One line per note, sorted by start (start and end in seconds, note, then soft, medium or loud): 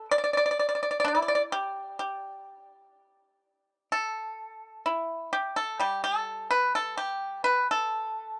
0.11 0.16 D5 medium
0.18 0.22 D5 medium
0.24 0.29 D5 medium
0.33 0.36 D5 medium
0.33 0.44 D5 medium
0.46 0.50 D5 medium
0.51 0.58 D5 medium
0.59 0.66 D5 medium
0.69 0.74 D5 medium
0.75 0.81 D5 soft
0.83 0.89 D5 medium
0.91 0.97 D5 medium
1.00 1.05 D5 medium
1.04 1.49 E4 medium
1.04 1.13 D5 medium
1.15 1.20 D5 medium
1.22 1.27 D5 medium
1.28 1.34 D5 medium
1.35 1.42 D5 medium
1.52 1.97 G4 medium
1.99 3.89 G4 medium
3.92 4.83 A4 medium
4.86 5.30 E4 medium
5.33 5.55 G4 medium
5.56 5.78 A4 medium
5.79 8.40 G3 medium
5.79 6.02 G4 medium
6.04 6.47 A4 medium
6.51 6.72 B4 medium
6.75 6.97 A4 medium
6.97 7.41 G4 medium
7.44 7.66 B4 medium
7.71 8.40 A4 medium